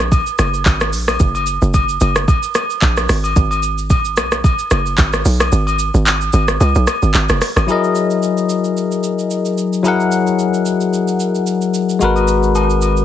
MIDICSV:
0, 0, Header, 1, 5, 480
1, 0, Start_track
1, 0, Tempo, 540541
1, 1066, Time_signature, 4, 2, 24, 8
1, 11588, End_track
2, 0, Start_track
2, 0, Title_t, "Tine electric piano"
2, 0, Program_c, 0, 4
2, 6807, Note_on_c, 0, 54, 74
2, 6819, Note_on_c, 0, 64, 69
2, 6830, Note_on_c, 0, 68, 67
2, 6842, Note_on_c, 0, 70, 68
2, 6853, Note_on_c, 0, 75, 80
2, 6971, Control_c, 0, 64, 127
2, 8701, Note_off_c, 0, 54, 0
2, 8706, Note_off_c, 0, 64, 0
2, 8712, Note_off_c, 0, 68, 0
2, 8718, Note_off_c, 0, 70, 0
2, 8724, Note_off_c, 0, 75, 0
2, 8729, Note_on_c, 0, 54, 72
2, 8740, Note_on_c, 0, 64, 68
2, 8752, Note_on_c, 0, 68, 68
2, 8764, Note_on_c, 0, 70, 67
2, 8775, Note_on_c, 0, 78, 87
2, 10621, Note_off_c, 0, 54, 0
2, 10627, Note_off_c, 0, 64, 0
2, 10633, Note_off_c, 0, 68, 0
2, 10639, Note_off_c, 0, 70, 0
2, 10645, Note_off_c, 0, 78, 0
2, 10649, Note_on_c, 0, 56, 73
2, 10665, Note_on_c, 0, 66, 71
2, 10675, Control_c, 0, 64, 0
2, 10680, Note_on_c, 0, 70, 69
2, 10695, Note_on_c, 0, 71, 84
2, 10815, Control_c, 0, 64, 127
2, 11588, Note_off_c, 0, 56, 0
2, 11588, Note_off_c, 0, 66, 0
2, 11588, Note_off_c, 0, 70, 0
2, 11588, Note_off_c, 0, 71, 0
2, 11588, End_track
3, 0, Start_track
3, 0, Title_t, "Log drum bass"
3, 0, Program_c, 1, 39
3, 0, Note_on_c, 1, 34, 92
3, 204, Note_off_c, 1, 34, 0
3, 345, Note_on_c, 1, 30, 93
3, 564, Note_off_c, 1, 30, 0
3, 585, Note_on_c, 1, 32, 101
3, 825, Note_on_c, 1, 34, 95
3, 839, Note_off_c, 1, 32, 0
3, 1044, Note_off_c, 1, 34, 0
3, 1065, Note_on_c, 1, 30, 112
3, 1404, Note_off_c, 1, 30, 0
3, 1437, Note_on_c, 1, 30, 106
3, 1754, Note_off_c, 1, 30, 0
3, 1786, Note_on_c, 1, 30, 106
3, 2004, Note_off_c, 1, 30, 0
3, 2505, Note_on_c, 1, 34, 99
3, 2723, Note_off_c, 1, 34, 0
3, 2746, Note_on_c, 1, 32, 94
3, 2964, Note_off_c, 1, 32, 0
3, 2986, Note_on_c, 1, 32, 113
3, 3705, Note_on_c, 1, 35, 108
3, 3718, Note_off_c, 1, 32, 0
3, 4043, Note_off_c, 1, 35, 0
3, 4185, Note_on_c, 1, 30, 94
3, 4403, Note_off_c, 1, 30, 0
3, 4425, Note_on_c, 1, 32, 103
3, 4643, Note_off_c, 1, 32, 0
3, 4665, Note_on_c, 1, 35, 85
3, 4883, Note_off_c, 1, 35, 0
3, 4904, Note_on_c, 1, 32, 108
3, 5243, Note_off_c, 1, 32, 0
3, 5277, Note_on_c, 1, 32, 97
3, 5594, Note_off_c, 1, 32, 0
3, 5625, Note_on_c, 1, 32, 101
3, 5844, Note_off_c, 1, 32, 0
3, 5866, Note_on_c, 1, 37, 109
3, 5986, Note_off_c, 1, 37, 0
3, 5999, Note_on_c, 1, 35, 101
3, 6096, Note_off_c, 1, 35, 0
3, 6238, Note_on_c, 1, 32, 83
3, 6336, Note_off_c, 1, 32, 0
3, 6345, Note_on_c, 1, 32, 94
3, 6465, Note_off_c, 1, 32, 0
3, 6478, Note_on_c, 1, 30, 88
3, 6576, Note_off_c, 1, 30, 0
3, 6717, Note_on_c, 1, 32, 97
3, 6815, Note_off_c, 1, 32, 0
3, 11588, End_track
4, 0, Start_track
4, 0, Title_t, "Sub bass"
4, 0, Program_c, 2, 38
4, 10666, Note_on_c, 2, 32, 86
4, 11588, Note_off_c, 2, 32, 0
4, 11588, End_track
5, 0, Start_track
5, 0, Title_t, "Drums"
5, 0, Note_on_c, 9, 37, 96
5, 85, Note_off_c, 9, 37, 0
5, 104, Note_on_c, 9, 36, 121
5, 106, Note_on_c, 9, 67, 79
5, 108, Note_on_c, 9, 82, 74
5, 193, Note_off_c, 9, 36, 0
5, 195, Note_off_c, 9, 67, 0
5, 197, Note_off_c, 9, 82, 0
5, 237, Note_on_c, 9, 82, 66
5, 326, Note_off_c, 9, 82, 0
5, 343, Note_on_c, 9, 82, 99
5, 345, Note_on_c, 9, 37, 94
5, 347, Note_on_c, 9, 67, 74
5, 432, Note_off_c, 9, 82, 0
5, 433, Note_off_c, 9, 37, 0
5, 436, Note_off_c, 9, 67, 0
5, 479, Note_on_c, 9, 82, 56
5, 568, Note_off_c, 9, 82, 0
5, 582, Note_on_c, 9, 39, 87
5, 583, Note_on_c, 9, 82, 91
5, 585, Note_on_c, 9, 36, 100
5, 588, Note_on_c, 9, 67, 67
5, 671, Note_off_c, 9, 39, 0
5, 672, Note_off_c, 9, 82, 0
5, 674, Note_off_c, 9, 36, 0
5, 677, Note_off_c, 9, 67, 0
5, 714, Note_on_c, 9, 82, 56
5, 720, Note_on_c, 9, 37, 96
5, 803, Note_off_c, 9, 82, 0
5, 809, Note_off_c, 9, 37, 0
5, 826, Note_on_c, 9, 46, 67
5, 826, Note_on_c, 9, 82, 88
5, 914, Note_off_c, 9, 46, 0
5, 914, Note_off_c, 9, 82, 0
5, 957, Note_on_c, 9, 67, 81
5, 959, Note_on_c, 9, 37, 92
5, 959, Note_on_c, 9, 82, 62
5, 1046, Note_off_c, 9, 67, 0
5, 1048, Note_off_c, 9, 37, 0
5, 1048, Note_off_c, 9, 82, 0
5, 1064, Note_on_c, 9, 82, 89
5, 1065, Note_on_c, 9, 36, 115
5, 1153, Note_off_c, 9, 82, 0
5, 1154, Note_off_c, 9, 36, 0
5, 1197, Note_on_c, 9, 67, 75
5, 1201, Note_on_c, 9, 82, 49
5, 1286, Note_off_c, 9, 67, 0
5, 1290, Note_off_c, 9, 82, 0
5, 1302, Note_on_c, 9, 82, 101
5, 1391, Note_off_c, 9, 82, 0
5, 1438, Note_on_c, 9, 82, 53
5, 1526, Note_off_c, 9, 82, 0
5, 1544, Note_on_c, 9, 36, 89
5, 1544, Note_on_c, 9, 82, 84
5, 1547, Note_on_c, 9, 67, 80
5, 1633, Note_off_c, 9, 36, 0
5, 1633, Note_off_c, 9, 82, 0
5, 1636, Note_off_c, 9, 67, 0
5, 1677, Note_on_c, 9, 82, 61
5, 1766, Note_off_c, 9, 82, 0
5, 1782, Note_on_c, 9, 82, 95
5, 1787, Note_on_c, 9, 67, 70
5, 1871, Note_off_c, 9, 82, 0
5, 1876, Note_off_c, 9, 67, 0
5, 1915, Note_on_c, 9, 82, 58
5, 1916, Note_on_c, 9, 37, 91
5, 2003, Note_off_c, 9, 82, 0
5, 2005, Note_off_c, 9, 37, 0
5, 2024, Note_on_c, 9, 36, 116
5, 2025, Note_on_c, 9, 67, 83
5, 2027, Note_on_c, 9, 82, 70
5, 2113, Note_off_c, 9, 36, 0
5, 2114, Note_off_c, 9, 67, 0
5, 2116, Note_off_c, 9, 82, 0
5, 2157, Note_on_c, 9, 82, 67
5, 2246, Note_off_c, 9, 82, 0
5, 2263, Note_on_c, 9, 82, 105
5, 2265, Note_on_c, 9, 37, 93
5, 2265, Note_on_c, 9, 67, 76
5, 2352, Note_off_c, 9, 82, 0
5, 2353, Note_off_c, 9, 37, 0
5, 2354, Note_off_c, 9, 67, 0
5, 2399, Note_on_c, 9, 82, 54
5, 2487, Note_off_c, 9, 82, 0
5, 2502, Note_on_c, 9, 39, 88
5, 2503, Note_on_c, 9, 82, 90
5, 2505, Note_on_c, 9, 36, 100
5, 2506, Note_on_c, 9, 67, 65
5, 2591, Note_off_c, 9, 39, 0
5, 2592, Note_off_c, 9, 82, 0
5, 2594, Note_off_c, 9, 36, 0
5, 2594, Note_off_c, 9, 67, 0
5, 2635, Note_on_c, 9, 82, 60
5, 2641, Note_on_c, 9, 37, 92
5, 2724, Note_off_c, 9, 82, 0
5, 2730, Note_off_c, 9, 37, 0
5, 2745, Note_on_c, 9, 46, 70
5, 2745, Note_on_c, 9, 82, 86
5, 2746, Note_on_c, 9, 37, 96
5, 2834, Note_off_c, 9, 37, 0
5, 2834, Note_off_c, 9, 46, 0
5, 2834, Note_off_c, 9, 82, 0
5, 2876, Note_on_c, 9, 67, 77
5, 2880, Note_on_c, 9, 82, 60
5, 2965, Note_off_c, 9, 67, 0
5, 2969, Note_off_c, 9, 82, 0
5, 2985, Note_on_c, 9, 36, 118
5, 2986, Note_on_c, 9, 82, 95
5, 3074, Note_off_c, 9, 36, 0
5, 3075, Note_off_c, 9, 82, 0
5, 3116, Note_on_c, 9, 67, 73
5, 3122, Note_on_c, 9, 82, 47
5, 3205, Note_off_c, 9, 67, 0
5, 3211, Note_off_c, 9, 82, 0
5, 3223, Note_on_c, 9, 82, 96
5, 3312, Note_off_c, 9, 82, 0
5, 3358, Note_on_c, 9, 82, 52
5, 3447, Note_off_c, 9, 82, 0
5, 3464, Note_on_c, 9, 36, 89
5, 3465, Note_on_c, 9, 82, 85
5, 3467, Note_on_c, 9, 67, 74
5, 3553, Note_off_c, 9, 36, 0
5, 3553, Note_off_c, 9, 82, 0
5, 3556, Note_off_c, 9, 67, 0
5, 3596, Note_on_c, 9, 82, 63
5, 3685, Note_off_c, 9, 82, 0
5, 3701, Note_on_c, 9, 82, 100
5, 3706, Note_on_c, 9, 67, 71
5, 3707, Note_on_c, 9, 37, 102
5, 3790, Note_off_c, 9, 82, 0
5, 3795, Note_off_c, 9, 67, 0
5, 3796, Note_off_c, 9, 37, 0
5, 3834, Note_on_c, 9, 82, 56
5, 3836, Note_on_c, 9, 37, 92
5, 3923, Note_off_c, 9, 82, 0
5, 3924, Note_off_c, 9, 37, 0
5, 3943, Note_on_c, 9, 67, 79
5, 3944, Note_on_c, 9, 36, 114
5, 3947, Note_on_c, 9, 82, 70
5, 4032, Note_off_c, 9, 36, 0
5, 4032, Note_off_c, 9, 67, 0
5, 4036, Note_off_c, 9, 82, 0
5, 4075, Note_on_c, 9, 82, 65
5, 4164, Note_off_c, 9, 82, 0
5, 4181, Note_on_c, 9, 82, 99
5, 4183, Note_on_c, 9, 37, 93
5, 4184, Note_on_c, 9, 67, 76
5, 4270, Note_off_c, 9, 82, 0
5, 4272, Note_off_c, 9, 37, 0
5, 4273, Note_off_c, 9, 67, 0
5, 4317, Note_on_c, 9, 82, 52
5, 4406, Note_off_c, 9, 82, 0
5, 4422, Note_on_c, 9, 39, 87
5, 4423, Note_on_c, 9, 82, 91
5, 4425, Note_on_c, 9, 36, 102
5, 4426, Note_on_c, 9, 67, 62
5, 4511, Note_off_c, 9, 39, 0
5, 4511, Note_off_c, 9, 82, 0
5, 4514, Note_off_c, 9, 36, 0
5, 4515, Note_off_c, 9, 67, 0
5, 4554, Note_on_c, 9, 82, 58
5, 4560, Note_on_c, 9, 37, 91
5, 4643, Note_off_c, 9, 82, 0
5, 4649, Note_off_c, 9, 37, 0
5, 4665, Note_on_c, 9, 46, 69
5, 4665, Note_on_c, 9, 82, 89
5, 4754, Note_off_c, 9, 46, 0
5, 4754, Note_off_c, 9, 82, 0
5, 4795, Note_on_c, 9, 67, 78
5, 4798, Note_on_c, 9, 37, 97
5, 4799, Note_on_c, 9, 82, 62
5, 4884, Note_off_c, 9, 67, 0
5, 4887, Note_off_c, 9, 37, 0
5, 4888, Note_off_c, 9, 82, 0
5, 4904, Note_on_c, 9, 82, 93
5, 4993, Note_off_c, 9, 82, 0
5, 5034, Note_on_c, 9, 67, 78
5, 5041, Note_on_c, 9, 82, 48
5, 5123, Note_off_c, 9, 67, 0
5, 5130, Note_off_c, 9, 82, 0
5, 5142, Note_on_c, 9, 82, 102
5, 5231, Note_off_c, 9, 82, 0
5, 5277, Note_on_c, 9, 82, 52
5, 5366, Note_off_c, 9, 82, 0
5, 5384, Note_on_c, 9, 82, 84
5, 5385, Note_on_c, 9, 67, 74
5, 5387, Note_on_c, 9, 39, 91
5, 5473, Note_off_c, 9, 82, 0
5, 5474, Note_off_c, 9, 67, 0
5, 5476, Note_off_c, 9, 39, 0
5, 5517, Note_on_c, 9, 82, 60
5, 5606, Note_off_c, 9, 82, 0
5, 5621, Note_on_c, 9, 82, 95
5, 5626, Note_on_c, 9, 67, 68
5, 5710, Note_off_c, 9, 82, 0
5, 5715, Note_off_c, 9, 67, 0
5, 5755, Note_on_c, 9, 82, 53
5, 5756, Note_on_c, 9, 37, 90
5, 5843, Note_off_c, 9, 82, 0
5, 5845, Note_off_c, 9, 37, 0
5, 5864, Note_on_c, 9, 67, 81
5, 5868, Note_on_c, 9, 82, 70
5, 5953, Note_off_c, 9, 67, 0
5, 5957, Note_off_c, 9, 82, 0
5, 5997, Note_on_c, 9, 82, 64
5, 6085, Note_off_c, 9, 82, 0
5, 6103, Note_on_c, 9, 82, 98
5, 6104, Note_on_c, 9, 37, 92
5, 6104, Note_on_c, 9, 67, 74
5, 6191, Note_off_c, 9, 82, 0
5, 6193, Note_off_c, 9, 37, 0
5, 6193, Note_off_c, 9, 67, 0
5, 6237, Note_on_c, 9, 82, 56
5, 6326, Note_off_c, 9, 82, 0
5, 6341, Note_on_c, 9, 39, 85
5, 6342, Note_on_c, 9, 82, 90
5, 6345, Note_on_c, 9, 67, 62
5, 6430, Note_off_c, 9, 39, 0
5, 6431, Note_off_c, 9, 82, 0
5, 6434, Note_off_c, 9, 67, 0
5, 6473, Note_on_c, 9, 82, 57
5, 6479, Note_on_c, 9, 37, 99
5, 6562, Note_off_c, 9, 82, 0
5, 6568, Note_off_c, 9, 37, 0
5, 6585, Note_on_c, 9, 37, 94
5, 6585, Note_on_c, 9, 46, 71
5, 6585, Note_on_c, 9, 82, 86
5, 6673, Note_off_c, 9, 46, 0
5, 6673, Note_off_c, 9, 82, 0
5, 6674, Note_off_c, 9, 37, 0
5, 6716, Note_on_c, 9, 67, 77
5, 6719, Note_on_c, 9, 37, 89
5, 6719, Note_on_c, 9, 82, 61
5, 6805, Note_off_c, 9, 67, 0
5, 6808, Note_off_c, 9, 37, 0
5, 6808, Note_off_c, 9, 82, 0
5, 6825, Note_on_c, 9, 82, 83
5, 6914, Note_off_c, 9, 82, 0
5, 6961, Note_on_c, 9, 82, 43
5, 7050, Note_off_c, 9, 82, 0
5, 7062, Note_on_c, 9, 82, 92
5, 7151, Note_off_c, 9, 82, 0
5, 7198, Note_on_c, 9, 82, 47
5, 7286, Note_off_c, 9, 82, 0
5, 7305, Note_on_c, 9, 82, 76
5, 7393, Note_off_c, 9, 82, 0
5, 7437, Note_on_c, 9, 82, 54
5, 7526, Note_off_c, 9, 82, 0
5, 7542, Note_on_c, 9, 82, 91
5, 7631, Note_off_c, 9, 82, 0
5, 7675, Note_on_c, 9, 82, 50
5, 7764, Note_off_c, 9, 82, 0
5, 7789, Note_on_c, 9, 82, 64
5, 7878, Note_off_c, 9, 82, 0
5, 7918, Note_on_c, 9, 82, 59
5, 8007, Note_off_c, 9, 82, 0
5, 8024, Note_on_c, 9, 82, 89
5, 8113, Note_off_c, 9, 82, 0
5, 8159, Note_on_c, 9, 82, 49
5, 8248, Note_off_c, 9, 82, 0
5, 8264, Note_on_c, 9, 82, 81
5, 8353, Note_off_c, 9, 82, 0
5, 8395, Note_on_c, 9, 82, 51
5, 8484, Note_off_c, 9, 82, 0
5, 8506, Note_on_c, 9, 82, 79
5, 8595, Note_off_c, 9, 82, 0
5, 8640, Note_on_c, 9, 82, 56
5, 8729, Note_off_c, 9, 82, 0
5, 8746, Note_on_c, 9, 82, 84
5, 8835, Note_off_c, 9, 82, 0
5, 8883, Note_on_c, 9, 82, 44
5, 8971, Note_off_c, 9, 82, 0
5, 8984, Note_on_c, 9, 82, 90
5, 9073, Note_off_c, 9, 82, 0
5, 9119, Note_on_c, 9, 82, 46
5, 9208, Note_off_c, 9, 82, 0
5, 9226, Note_on_c, 9, 82, 75
5, 9315, Note_off_c, 9, 82, 0
5, 9359, Note_on_c, 9, 82, 56
5, 9448, Note_off_c, 9, 82, 0
5, 9463, Note_on_c, 9, 82, 90
5, 9552, Note_off_c, 9, 82, 0
5, 9596, Note_on_c, 9, 82, 52
5, 9685, Note_off_c, 9, 82, 0
5, 9709, Note_on_c, 9, 82, 65
5, 9798, Note_off_c, 9, 82, 0
5, 9838, Note_on_c, 9, 82, 63
5, 9927, Note_off_c, 9, 82, 0
5, 9944, Note_on_c, 9, 82, 94
5, 10033, Note_off_c, 9, 82, 0
5, 10079, Note_on_c, 9, 82, 50
5, 10168, Note_off_c, 9, 82, 0
5, 10183, Note_on_c, 9, 82, 78
5, 10272, Note_off_c, 9, 82, 0
5, 10314, Note_on_c, 9, 82, 55
5, 10403, Note_off_c, 9, 82, 0
5, 10426, Note_on_c, 9, 82, 78
5, 10515, Note_off_c, 9, 82, 0
5, 10560, Note_on_c, 9, 82, 55
5, 10649, Note_off_c, 9, 82, 0
5, 10665, Note_on_c, 9, 82, 86
5, 10754, Note_off_c, 9, 82, 0
5, 10796, Note_on_c, 9, 67, 67
5, 10802, Note_on_c, 9, 82, 44
5, 10885, Note_off_c, 9, 67, 0
5, 10891, Note_off_c, 9, 82, 0
5, 10903, Note_on_c, 9, 82, 92
5, 10992, Note_off_c, 9, 82, 0
5, 11039, Note_on_c, 9, 82, 47
5, 11128, Note_off_c, 9, 82, 0
5, 11146, Note_on_c, 9, 82, 71
5, 11147, Note_on_c, 9, 67, 71
5, 11147, Note_on_c, 9, 77, 70
5, 11235, Note_off_c, 9, 82, 0
5, 11236, Note_off_c, 9, 67, 0
5, 11236, Note_off_c, 9, 77, 0
5, 11278, Note_on_c, 9, 82, 57
5, 11367, Note_off_c, 9, 82, 0
5, 11382, Note_on_c, 9, 82, 91
5, 11388, Note_on_c, 9, 67, 62
5, 11471, Note_off_c, 9, 82, 0
5, 11477, Note_off_c, 9, 67, 0
5, 11516, Note_on_c, 9, 82, 49
5, 11588, Note_off_c, 9, 82, 0
5, 11588, End_track
0, 0, End_of_file